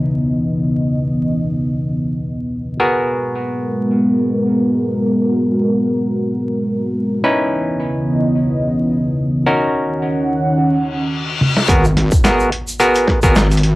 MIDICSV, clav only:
0, 0, Header, 1, 2, 480
1, 0, Start_track
1, 0, Key_signature, 5, "minor"
1, 0, Tempo, 500000
1, 13203, End_track
2, 0, Start_track
2, 0, Title_t, "Clav"
2, 0, Program_c, 0, 7
2, 0, Note_on_c, 0, 61, 72
2, 0, Note_on_c, 0, 63, 68
2, 0, Note_on_c, 0, 64, 68
2, 0, Note_on_c, 0, 71, 84
2, 2658, Note_off_c, 0, 63, 0
2, 2658, Note_off_c, 0, 64, 0
2, 2659, Note_off_c, 0, 61, 0
2, 2659, Note_off_c, 0, 71, 0
2, 2686, Note_on_c, 0, 59, 74
2, 2686, Note_on_c, 0, 68, 69
2, 2687, Note_on_c, 0, 70, 81
2, 2688, Note_on_c, 0, 66, 65
2, 6926, Note_off_c, 0, 59, 0
2, 6926, Note_off_c, 0, 66, 0
2, 6926, Note_off_c, 0, 68, 0
2, 6926, Note_off_c, 0, 70, 0
2, 6951, Note_on_c, 0, 61, 79
2, 6951, Note_on_c, 0, 63, 70
2, 6951, Note_on_c, 0, 64, 68
2, 6951, Note_on_c, 0, 71, 84
2, 9058, Note_off_c, 0, 61, 0
2, 9058, Note_off_c, 0, 63, 0
2, 9058, Note_off_c, 0, 64, 0
2, 9058, Note_off_c, 0, 71, 0
2, 9085, Note_on_c, 0, 61, 77
2, 9085, Note_on_c, 0, 70, 81
2, 9086, Note_on_c, 0, 63, 68
2, 9086, Note_on_c, 0, 66, 71
2, 10153, Note_off_c, 0, 61, 0
2, 10153, Note_off_c, 0, 70, 0
2, 10154, Note_off_c, 0, 63, 0
2, 10154, Note_off_c, 0, 66, 0
2, 11217, Note_on_c, 0, 70, 100
2, 11218, Note_on_c, 0, 59, 90
2, 11218, Note_on_c, 0, 66, 81
2, 11218, Note_on_c, 0, 68, 79
2, 11384, Note_off_c, 0, 70, 0
2, 11385, Note_off_c, 0, 59, 0
2, 11385, Note_off_c, 0, 66, 0
2, 11385, Note_off_c, 0, 68, 0
2, 11750, Note_on_c, 0, 59, 92
2, 11751, Note_on_c, 0, 66, 81
2, 11751, Note_on_c, 0, 68, 90
2, 11751, Note_on_c, 0, 70, 103
2, 11998, Note_off_c, 0, 59, 0
2, 11998, Note_off_c, 0, 66, 0
2, 11998, Note_off_c, 0, 68, 0
2, 11998, Note_off_c, 0, 70, 0
2, 12284, Note_on_c, 0, 70, 99
2, 12285, Note_on_c, 0, 59, 92
2, 12286, Note_on_c, 0, 66, 86
2, 12286, Note_on_c, 0, 68, 90
2, 12667, Note_off_c, 0, 59, 0
2, 12667, Note_off_c, 0, 68, 0
2, 12667, Note_off_c, 0, 70, 0
2, 12668, Note_off_c, 0, 66, 0
2, 12700, Note_on_c, 0, 66, 82
2, 12700, Note_on_c, 0, 68, 83
2, 12701, Note_on_c, 0, 59, 90
2, 12701, Note_on_c, 0, 70, 104
2, 12839, Note_off_c, 0, 66, 0
2, 12839, Note_off_c, 0, 68, 0
2, 12840, Note_off_c, 0, 59, 0
2, 12840, Note_off_c, 0, 70, 0
2, 13203, End_track
0, 0, End_of_file